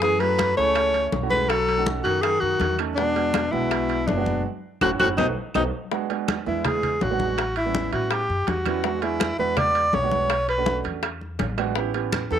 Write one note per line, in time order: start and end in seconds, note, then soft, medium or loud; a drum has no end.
0.00 0.52 F#2 medium
0.00 0.21 E3 medium
0.00 0.15 A3 medium
0.00 0.15 C#4 medium
0.00 0.16 E4 medium
0.00 0.16 G#4 medium
0.00 0.22 G#4 medium
0.00 high bongo medium
0.00 high conga soft
0.20 0.56 F#3 medium
0.20 0.47 A3 medium
0.20 0.47 C#4 medium
0.20 0.47 E4 medium
0.20 0.47 A4 medium
0.20 0.57 B4 loud
0.20 high bongo soft
0.20 high conga soft
0.20 high timbale medium
0.39 high bongo medium
0.39 high conga medium
0.39 high timbale medium
0.39 claves medium
0.56 1.10 C#2 medium
0.56 1.09 A3 medium
0.56 1.03 A3 medium
0.56 1.03 C#4 medium
0.56 1.03 E4 medium
0.56 1.04 G#4 medium
0.56 1.09 C#5 loud
0.56 high bongo soft
0.56 high conga soft
0.75 high bongo medium
0.75 high conga soft
0.75 high timbale medium
0.75 claves medium
0.94 high conga soft
0.94 high timbale medium
1.12 2.00 B1 medium
1.12 high bongo soft
1.12 low bongo medium
1.12 high conga medium
1.12 low timbale medium
1.23 1.50 A3 medium
1.23 1.50 C#4 medium
1.23 1.50 E4 medium
1.23 1.50 F#4 medium
1.30 1.49 G#3 medium
1.30 1.51 B4 medium
1.30 high bongo soft
1.30 high conga medium
1.48 1.86 F#3 medium
1.48 1.87 A4 loud
1.48 high bongo medium
1.48 high conga soft
1.48 high timbale medium
1.48 claves medium
1.68 high bongo soft
1.68 high conga soft
1.68 high timbale medium
1.77 2.29 A3 medium
1.77 2.29 C#4 medium
1.77 2.29 D#4 medium
1.77 2.30 F#4 medium
1.86 high bongo medium
1.86 high conga medium
2.03 2.40 F#2 medium
2.03 2.22 D#3 medium
2.03 2.23 F#4 medium
2.03 high bongo soft
2.03 high conga soft
2.03 high timbale medium
2.21 2.40 D#3 medium
2.21 2.42 G#4 medium
2.21 high bongo medium
2.21 high conga soft
2.21 high timbale medium
2.21 claves medium
2.40 2.59 F#2 medium
2.40 2.78 D#3 medium
2.40 2.78 F#4 medium
2.40 high conga soft
2.60 3.47 E2 medium
2.60 high bongo soft
2.60 low bongo medium
2.60 high conga medium
2.60 high timbale medium
2.79 2.92 A3 medium
2.79 2.92 C#4 medium
2.79 2.92 D#4 medium
2.79 2.92 A4 medium
2.79 high bongo soft
2.79 high timbale medium
2.79 claves medium
2.95 3.52 B2 medium
2.95 3.10 G#3 medium
2.95 3.10 B3 medium
2.95 3.53 D4 medium
2.95 3.10 D4 medium
2.95 3.11 F#4 medium
2.95 high bongo medium
2.95 high conga soft
3.15 3.42 G#3 medium
3.15 3.42 B3 medium
3.15 3.42 D4 medium
3.15 3.42 F#4 medium
3.15 high bongo soft
3.15 high conga soft
3.15 high timbale medium
3.34 high bongo medium
3.34 high conga medium
3.34 high timbale medium
3.34 claves medium
3.52 4.04 B1 medium
3.52 4.08 B2 medium
3.52 3.98 G#3 medium
3.52 3.98 B3 medium
3.52 3.98 D4 medium
3.52 4.09 E4 medium
3.52 3.98 F#4 medium
3.52 high bongo soft
3.52 high conga soft
3.71 high bongo medium
3.71 high conga soft
3.71 high timbale medium
3.71 claves medium
3.89 high conga soft
3.89 high timbale medium
4.07 4.43 F#1 medium
4.07 4.45 B2 medium
4.07 4.44 D4 medium
4.07 high bongo soft
4.07 low bongo medium
4.07 high conga medium
4.07 low timbale medium
4.17 4.45 G#3 medium
4.17 4.45 B3 medium
4.17 4.45 D4 medium
4.17 4.45 F#4 medium
4.26 high bongo soft
4.26 high conga medium
4.81 4.96 F#1 medium
4.81 4.91 A2 medium
4.81 4.94 C#4 medium
4.81 4.94 E4 medium
4.81 4.94 F#4 medium
4.81 4.91 F#4 medium
4.81 low bongo medium
4.81 high conga medium
4.81 high timbale medium
4.81 claves medium
5.00 5.14 F#1 medium
5.00 5.09 A2 medium
5.00 5.12 C#4 medium
5.00 5.12 E4 medium
5.00 5.09 F#4 medium
5.00 5.12 F#4 medium
5.00 low bongo medium
5.00 high conga medium
5.00 high timbale loud
5.00 claves medium
5.18 5.32 B1 medium
5.18 5.27 B2 medium
5.18 5.30 A3 medium
5.18 5.30 B3 medium
5.18 5.27 D#4 medium
5.18 5.30 D#4 medium
5.18 low bongo medium
5.18 high conga medium
5.18 high timbale loud
5.18 claves medium
5.54 5.69 B1 loud
5.54 5.65 B2 medium
5.54 5.67 A3 medium
5.54 5.67 B3 medium
5.54 5.67 D#4 medium
5.54 5.64 D#4 medium
5.54 low bongo medium
5.54 high conga medium
5.54 high timbale loud
5.54 claves medium
5.91 6.04 G#3 medium
5.91 6.05 B3 medium
5.91 6.05 D4 medium
5.91 6.05 F#4 loud
5.91 high bongo medium
5.91 high conga soft
6.10 6.36 G#3 medium
6.10 6.36 B3 medium
6.10 6.36 D4 medium
6.10 6.36 F#4 medium
6.10 high bongo soft
6.10 high conga soft
6.10 high timbale medium
6.28 high bongo medium
6.28 high conga medium
6.28 high timbale medium
6.28 claves medium
6.46 6.98 E2 medium
6.46 6.92 G#3 medium
6.46 6.92 B3 medium
6.46 6.92 D4 medium
6.46 6.67 E4 medium
6.46 6.92 E4 medium
6.46 high bongo soft
6.46 high conga soft
6.65 7.04 G#4 medium
6.65 high bongo medium
6.65 high conga soft
6.65 low conga medium
6.65 high timbale medium
6.65 claves medium
6.83 high conga soft
6.83 low conga medium
6.83 high timbale medium
7.01 7.87 A1 loud
7.01 7.56 F#4 medium
7.01 high bongo soft
7.01 low bongo medium
7.01 high conga medium
7.01 low timbale medium
7.11 7.38 G#3 medium
7.11 7.38 B3 medium
7.11 7.39 D4 medium
7.11 7.39 F#4 medium
7.20 high bongo soft
7.20 high conga medium
7.38 high bongo medium
7.38 high conga soft
7.38 high timbale medium
7.38 claves medium
7.56 7.91 E4 medium
7.56 high bongo soft
7.56 high conga soft
7.56 high timbale medium
7.66 8.17 G3 medium
7.66 8.17 B3 medium
7.66 8.17 C#4 medium
7.66 8.17 E4 medium
7.75 high bongo medium
7.75 high conga medium
7.93 8.27 A2 medium
7.93 8.13 F#4 medium
7.93 high bongo soft
7.93 high conga soft
7.93 high timbale medium
8.10 8.50 G4 medium
8.10 high bongo medium
8.10 high conga soft
8.10 high timbale medium
8.10 claves medium
8.29 8.47 F#2 medium
8.29 high conga soft
8.47 9.33 E2 medium
8.47 9.04 F#4 medium
8.47 high bongo soft
8.47 low bongo medium
8.47 high conga medium
8.47 high timbale medium
8.65 8.79 G3 medium
8.65 8.79 B3 medium
8.65 8.79 C#4 medium
8.65 8.79 E4 medium
8.65 high bongo soft
8.65 high conga medium
8.65 high timbale medium
8.65 claves medium
8.84 8.97 G#3 medium
8.84 8.97 B3 medium
8.84 8.97 D4 medium
8.84 8.97 F#4 medium
8.84 high bongo medium
8.84 high conga soft
9.02 9.28 G#3 medium
9.02 9.28 B3 medium
9.02 9.28 D4 medium
9.02 9.39 E4 medium
9.02 9.28 G#4 medium
9.02 high bongo soft
9.02 high conga soft
9.02 high timbale medium
9.20 high bongo medium
9.20 high conga medium
9.20 high timbale medium
9.20 claves medium
9.38 9.90 E2 medium
9.38 9.84 G#3 medium
9.38 9.84 B3 medium
9.38 9.84 D4 medium
9.38 9.84 F#4 medium
9.38 9.60 B4 medium
9.38 high bongo soft
9.38 high conga soft
9.57 9.96 D5 loud
9.57 high bongo medium
9.57 high conga soft
9.57 low conga medium
9.57 high timbale medium
9.57 claves medium
9.75 high conga soft
9.75 high timbale medium
9.93 10.79 B1 medium
9.93 10.49 C#5 medium
9.93 high bongo soft
9.93 low bongo medium
9.93 high conga medium
9.93 low timbale medium
10.03 10.30 G#3 medium
10.03 10.31 B3 medium
10.03 10.31 D4 medium
10.03 10.31 F#4 medium
10.11 high bongo soft
10.11 high conga medium
10.30 high bongo medium
10.30 high conga soft
10.30 high timbale medium
10.30 claves medium
10.48 10.83 B4 medium
10.48 high bongo soft
10.48 high conga soft
10.48 high timbale medium
10.58 11.03 A3 medium
10.58 11.04 C#4 medium
10.58 11.03 D4 medium
10.58 11.04 F#4 medium
10.66 high bongo medium
10.66 high conga medium
10.84 11.36 E2 medium
10.84 high bongo soft
10.84 high conga soft
10.84 high timbale medium
11.03 high bongo medium
11.03 high conga soft
11.03 high timbale medium
11.03 claves medium
11.21 high conga soft
11.39 12.25 A1 medium
11.39 high bongo soft
11.39 low bongo medium
11.39 high conga medium
11.39 high timbale medium
11.39 low timbale medium
11.58 11.71 G#3 medium
11.58 11.71 B3 medium
11.58 11.71 D4 medium
11.58 11.71 F#4 loud
11.58 high bongo soft
11.58 high timbale medium
11.58 claves medium
11.76 11.89 B3 medium
11.76 11.89 C#4 medium
11.76 11.89 E4 medium
11.76 11.90 G4 loud
11.76 high bongo medium
11.76 high conga soft
11.94 12.20 B3 medium
11.94 12.20 C#4 medium
11.94 12.20 E4 medium
11.94 12.20 G4 medium
11.94 high bongo soft
11.94 high conga soft
11.94 high timbale medium
12.13 high bongo medium
12.13 high conga medium
12.13 high timbale medium
12.13 claves medium
12.30 12.39 E2 medium
12.30 12.39 B3 medium
12.30 12.39 C#4 medium
12.30 12.39 E4 medium
12.30 12.39 G4 medium
12.30 12.39 A4 medium
12.30 high bongo soft
12.30 high conga soft